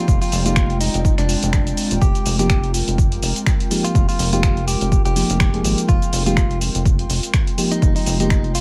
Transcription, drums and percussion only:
0.08 kick, cabasa
0.22 open hi-hat, cabasa
0.32 open hi-hat, cabasa
0.46 closed hi-hat, cabasa
0.56 finger snap, kick, cabasa
0.70 closed hi-hat
0.81 open hi-hat, cabasa
0.94 closed hi-hat, cabasa
1.05 kick, cabasa
1.18 finger snap, closed hi-hat, cabasa
1.29 open hi-hat, cabasa
1.43 closed hi-hat, cabasa
1.53 finger snap, kick, cabasa
1.67 closed hi-hat, cabasa
1.77 open hi-hat, cabasa
1.91 closed hi-hat, cabasa
2.02 kick, cabasa
2.15 closed hi-hat, cabasa
2.26 open hi-hat, cabasa
2.39 closed hi-hat, cabasa
2.50 finger snap, kick, cabasa
2.64 closed hi-hat
2.74 open hi-hat, cabasa
2.88 closed hi-hat, cabasa
2.98 kick, cabasa
3.12 closed hi-hat
3.22 open hi-hat, cabasa
3.36 closed hi-hat, cabasa
3.46 finger snap, kick, cabasa
3.60 closed hi-hat
3.71 open hi-hat, cabasa
3.85 closed hi-hat, cabasa
3.95 kick, cabasa
4.09 open hi-hat, cabasa
4.19 open hi-hat, cabasa
4.33 closed hi-hat, cabasa
4.43 finger snap, kick, cabasa
4.57 closed hi-hat
4.68 open hi-hat, cabasa
4.81 closed hi-hat, cabasa
4.92 kick, cabasa
5.05 closed hi-hat, cabasa
5.16 open hi-hat, cabasa
5.30 closed hi-hat, cabasa
5.40 finger snap, kick, cabasa
5.54 closed hi-hat
5.64 open hi-hat, cabasa
5.78 closed hi-hat, cabasa
5.89 kick, cabasa
6.02 closed hi-hat, cabasa
6.13 open hi-hat, cabasa
6.26 closed hi-hat, cabasa
6.37 finger snap, kick, cabasa
6.51 closed hi-hat
6.61 open hi-hat, cabasa
6.75 closed hi-hat, cabasa
6.85 kick, cabasa
6.99 closed hi-hat
7.10 open hi-hat, cabasa
7.23 closed hi-hat, cabasa
7.34 finger snap, kick, cabasa
7.47 closed hi-hat
7.58 open hi-hat, cabasa
7.72 closed hi-hat, cabasa
7.82 kick, cabasa
7.96 open hi-hat, cabasa
8.06 open hi-hat, cabasa
8.20 closed hi-hat, cabasa
8.30 finger snap, kick, cabasa
8.44 closed hi-hat
8.55 open hi-hat, cabasa

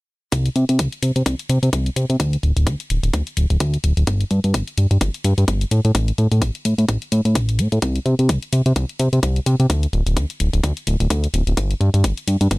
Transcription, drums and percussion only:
0.32 kick, closed hi-hat
0.46 closed hi-hat
0.56 closed hi-hat
0.69 closed hi-hat
0.79 kick, closed hi-hat
0.92 closed hi-hat
1.03 closed hi-hat
1.16 closed hi-hat
1.26 kick, closed hi-hat
1.39 closed hi-hat
1.50 closed hi-hat
1.63 closed hi-hat
1.73 kick, closed hi-hat
1.86 closed hi-hat
1.96 closed hi-hat
2.10 closed hi-hat
2.20 kick, closed hi-hat
2.33 closed hi-hat
2.43 closed hi-hat
2.57 closed hi-hat
2.67 kick, closed hi-hat
2.80 closed hi-hat
2.90 closed hi-hat
3.03 closed hi-hat
3.14 kick, closed hi-hat
3.27 closed hi-hat
3.37 closed hi-hat
3.50 closed hi-hat
3.60 kick, closed hi-hat
3.74 closed hi-hat
3.84 closed hi-hat
3.97 closed hi-hat
4.07 kick, closed hi-hat
4.21 closed hi-hat
4.31 closed hi-hat
4.44 closed hi-hat
4.54 kick, closed hi-hat
4.67 closed hi-hat
4.78 closed hi-hat
4.91 closed hi-hat
5.01 kick, closed hi-hat
5.14 closed hi-hat
5.24 closed hi-hat
5.38 closed hi-hat
5.48 kick, closed hi-hat
5.61 closed hi-hat
5.71 closed hi-hat
5.85 closed hi-hat
5.95 kick, closed hi-hat
6.08 closed hi-hat
6.18 closed hi-hat
6.32 closed hi-hat
6.42 kick, closed hi-hat
6.55 closed hi-hat
6.65 closed hi-hat
6.78 closed hi-hat
6.89 kick, closed hi-hat
7.02 closed hi-hat
7.12 closed hi-hat
7.25 closed hi-hat
7.35 kick, closed hi-hat
7.49 closed hi-hat
7.59 closed hi-hat
7.72 closed hi-hat
7.82 kick, closed hi-hat
7.96 closed hi-hat
8.06 closed hi-hat
8.19 closed hi-hat
8.29 kick, closed hi-hat
8.43 closed hi-hat
8.53 closed hi-hat
8.66 closed hi-hat
8.76 kick, closed hi-hat
8.89 closed hi-hat
8.99 closed hi-hat
9.13 closed hi-hat
9.23 kick, closed hi-hat
9.36 closed hi-hat
9.46 closed hi-hat
9.60 closed hi-hat
9.70 kick, closed hi-hat
9.83 closed hi-hat
9.93 closed hi-hat
10.07 closed hi-hat
10.17 kick, closed hi-hat
10.30 closed hi-hat
10.40 closed hi-hat
10.53 closed hi-hat
10.63 kick, closed hi-hat
10.77 closed hi-hat
10.87 closed hi-hat
11.00 closed hi-hat
11.10 kick, closed hi-hat
11.24 closed hi-hat
11.34 closed hi-hat
11.47 closed hi-hat
11.57 kick, closed hi-hat
11.71 closed hi-hat
11.81 closed hi-hat
11.94 closed hi-hat
12.04 kick, closed hi-hat
12.17 closed hi-hat
12.28 closed hi-hat
12.41 closed hi-hat
12.51 kick, closed hi-hat

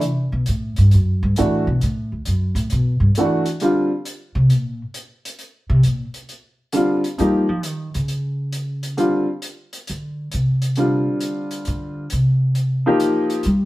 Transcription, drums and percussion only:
0.01 closed hi-hat
0.46 closed hi-hat
0.76 closed hi-hat
0.91 closed hi-hat
1.36 closed hi-hat
1.81 closed hi-hat
2.25 closed hi-hat
2.56 closed hi-hat
2.70 closed hi-hat
3.15 closed hi-hat
3.46 closed hi-hat
3.60 closed hi-hat
4.05 closed hi-hat
4.50 closed hi-hat
4.94 closed hi-hat
5.25 closed hi-hat
5.39 closed hi-hat
5.83 closed hi-hat
6.14 closed hi-hat
6.29 closed hi-hat
6.72 closed hi-hat
7.04 closed hi-hat
7.19 closed hi-hat
7.63 closed hi-hat
7.94 closed hi-hat
8.08 closed hi-hat
8.53 closed hi-hat
8.83 closed hi-hat
8.98 closed hi-hat
9.42 closed hi-hat
9.73 closed hi-hat
9.87 closed hi-hat
10.32 closed hi-hat
10.62 closed hi-hat
10.76 closed hi-hat
11.20 closed hi-hat
11.51 closed hi-hat
11.65 closed hi-hat
12.10 closed hi-hat
12.55 closed hi-hat
13.00 closed hi-hat
13.30 closed hi-hat
13.43 closed hi-hat

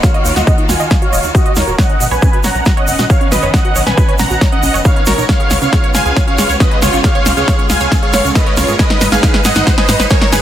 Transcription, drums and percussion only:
0.03 kick, snare, closed hi-hat, shaker
0.14 closed hi-hat
0.25 open hi-hat, shaker
0.36 snare, shaker
0.47 kick, closed hi-hat, shaker
0.58 closed hi-hat
0.69 snare, open hi-hat, shaker
0.80 closed hi-hat, shaker
0.90 kick, snare, closed hi-hat, shaker
1.02 closed hi-hat
1.13 open hi-hat, shaker
1.23 closed hi-hat, shaker
1.35 kick, closed hi-hat, shaker
1.46 closed hi-hat
1.56 snare, open hi-hat, shaker
1.68 closed hi-hat, shaker
1.78 kick, snare, closed hi-hat, shaker
1.89 closed hi-hat
2.00 open hi-hat, shaker
2.11 closed hi-hat, shaker
2.22 kick, closed hi-hat, shaker
2.33 closed hi-hat
2.44 snare, open hi-hat, shaker
2.55 closed hi-hat, shaker
2.65 kick, snare, closed hi-hat, shaker
2.77 closed hi-hat
2.88 open hi-hat, shaker
2.99 snare, closed hi-hat, shaker
3.10 kick, closed hi-hat, shaker
3.21 closed hi-hat
3.32 snare, open hi-hat, shaker
3.42 closed hi-hat, shaker
3.54 kick, snare, closed hi-hat, shaker
3.65 closed hi-hat
3.76 open hi-hat, shaker
3.87 snare, shaker
3.97 kick, closed hi-hat, shaker
4.08 closed hi-hat
4.19 snare, open hi-hat, shaker
4.30 closed hi-hat, shaker
4.41 kick, snare, closed hi-hat, shaker
4.52 closed hi-hat
4.63 open hi-hat, shaker
4.74 closed hi-hat, shaker
4.85 kick, closed hi-hat, shaker
4.96 closed hi-hat
5.06 snare, open hi-hat, shaker
5.18 closed hi-hat, shaker
5.29 kick, snare, closed hi-hat, shaker
5.40 closed hi-hat
5.51 snare, open hi-hat, shaker
5.62 closed hi-hat, shaker
5.73 kick, snare, closed hi-hat, shaker
5.84 closed hi-hat
5.94 snare, open hi-hat, shaker
6.05 closed hi-hat, shaker
6.16 kick, snare, closed hi-hat, shaker
6.27 closed hi-hat
6.38 snare, open hi-hat, shaker
6.49 closed hi-hat, shaker
6.60 kick, snare, closed hi-hat, shaker
6.71 closed hi-hat
6.82 snare, open hi-hat, shaker
6.93 closed hi-hat, shaker
7.04 kick, snare, closed hi-hat, shaker
7.15 closed hi-hat
7.26 snare, open hi-hat, shaker
7.37 closed hi-hat, shaker
7.48 kick, snare, closed hi-hat, shaker
7.59 closed hi-hat
7.70 snare, open hi-hat, shaker
7.80 closed hi-hat, shaker
7.92 kick, snare, closed hi-hat, shaker
8.03 closed hi-hat
8.13 snare, open hi-hat, shaker
8.24 closed hi-hat, shaker
8.35 kick, snare, closed hi-hat, shaker
8.46 closed hi-hat
8.57 snare, open hi-hat, shaker
8.68 closed hi-hat, shaker
8.79 kick, snare, closed hi-hat, shaker
8.90 snare, closed hi-hat
9.01 snare, open hi-hat, shaker
9.12 snare, closed hi-hat, shaker
9.23 kick, snare, closed hi-hat, shaker
9.34 snare, closed hi-hat
9.44 snare, open hi-hat, shaker
9.55 snare, closed hi-hat, shaker
9.67 kick, snare, closed hi-hat, shaker
9.78 snare, closed hi-hat
9.89 snare, open hi-hat, shaker
10.00 snare, shaker
10.10 kick, snare, closed hi-hat, shaker
10.22 snare, closed hi-hat
10.32 snare, open hi-hat, shaker

